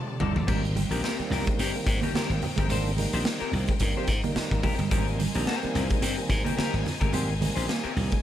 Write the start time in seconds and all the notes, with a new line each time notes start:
Already playing: A4 C5 D5 A5
0.08 G4, muted clean electric guitar stroke
0.20 G1 G3 D#4 A4 D5, floor tom, muted conga, high conga
0.35 G1 F3 D5, muted clean electric guitar stroke, floor tom
0.47 G#1 D#3 G3 A#3 C4 G4 A#4 C5 D#5 G5, kick, crash, low conga
0.65 closed hi-hat
0.75 G3, muted clean electric guitar stroke, closed hi-hat, muted conga, high conga
0.90 A#1 D#3 G3 A#3 C4 G4 A#4, muted clean electric guitar stroke, closed hi-hat
1.03 A#3 C4 G4 A#4, snare
1.19 D#3 G3 A#3 C4, muted slap bass stroke, muted clean electric guitar stroke, closed hi-hat
1.30 C2 C4 G4 A#4, muted clean electric guitar stroke, snare, open hi-hat, low conga
1.46 G#3, muted clean electric guitar stroke, kick, closed hi-hat
1.59 G2 C4 G4 A#4, closed hi-hat, muted conga
1.75 D#3 G3 A#3 C4, closed hi-hat
1.86 G#2, muted clean electric guitar stroke, kick, snare, closed hi-hat
2.01 A#3 C4 G4 A#4, closed hi-hat, high conga
2.14 A#3 C4 G4 A#4, muted slap bass stroke, snare, muted conga, high conga
2.29 G#1, muted clean electric guitar stroke, closed hi-hat
2.42 muted clean electric guitar stroke, open hi-hat, muted conga, high conga, low conga
2.56 G1 G#3 C4 G4 A#4, kick, closed hi-hat
2.68 G#1 D#3 G3 G#3 A#3 C4 D4 G4 C5, closed hi-hat, muted conga, low conga
2.87 closed hi-hat
2.97 D#3 G3 G#3 A#3 D#4, muted clean electric guitar stroke, closed hi-hat, high conga
3.12 A#1 C4 G4 C5, muted clean electric guitar stroke, closed hi-hat
3.25 A#3, muted clean electric guitar stroke, snare
3.40 C4 G4 A#4, muted slap bass stroke, closed hi-hat
3.52 C2 D#3 G3 A#3 C4, muted clean electric guitar stroke, open hi-hat, low conga
3.67 G#3, muted clean electric guitar stroke, kick, closed hi-hat
3.79 G2 D#3 G3 A#3 C4, muted clean electric guitar stroke, kick, closed hi-hat
3.97 C4 G4 C5
4.07 G#2, muted clean electric guitar stroke, kick, snare, closed hi-hat
4.24 D#3 G3 A#3 D#4, muted clean electric guitar stroke, closed hi-hat, high conga
4.35 muted clean electric guitar stroke, muted slap bass stroke, snare, high conga
4.51 G#1, kick, closed hi-hat
4.63 G#3 C4 G4 A#4, kick, open hi-hat, muted conga, high conga, low conga
4.79 G1 G3, muted clean electric guitar stroke, closed hi-hat
4.90 G#1 D#3 G3 A#3 C4 G4 A#4 G#5, kick, closed hi-hat, muted conga, low conga
5.08 closed hi-hat
5.18 G3, muted clean electric guitar stroke, closed hi-hat, high conga
5.34 A#1 D#3 G3 A#3 C4 D4 G4 A#4, muted clean electric guitar stroke, closed hi-hat
5.46 A#3 C4 G4 A#4, snare
5.62 D#3 G3 A#3 C4, muted clean electric guitar stroke, muted slap bass stroke, closed hi-hat
5.74 C2 C4 G4 A#4, muted clean electric guitar stroke, snare, closed hi-hat, muted conga, low conga
5.89 G#3, muted clean electric guitar stroke, kick, closed hi-hat
6.02 G2 C4 G4 A#4, closed hi-hat
6.17 D#3 G3 A#3 C4, closed hi-hat
6.29 G#2, muted clean electric guitar stroke, kick, snare, closed hi-hat, muted conga
6.44 A#3 C4 G4 A#4, closed hi-hat, high conga
6.57 A#3 C4 G4 A#4, muted slap bass stroke, snare, muted conga, high conga
6.74 G#1, muted clean electric guitar stroke, closed hi-hat
6.85 muted clean electric guitar stroke, snare, open hi-hat, high conga, low conga
7.00 G1 G#3 C4 G4 A#4, kick, closed hi-hat
7.12 G#1 D#3 G3 G#3 A#3 C4 G4 C5, closed hi-hat, muted conga, low conga
7.40 D#3 G3 G#3 A#3 C4, muted clean electric guitar stroke, closed hi-hat, muted conga, high conga
7.55 A#1 C4 G4 C5, muted clean electric guitar stroke, closed hi-hat
7.67 A#3, muted clean electric guitar stroke, snare, muted conga
7.84 C4 G4 A#4, muted slap bass stroke, closed hi-hat
7.95 C2 D#3 G3 A#3 C4, muted clean electric guitar stroke, open hi-hat, muted conga, low conga
8.11 G#3, muted clean electric guitar stroke, kick, closed hi-hat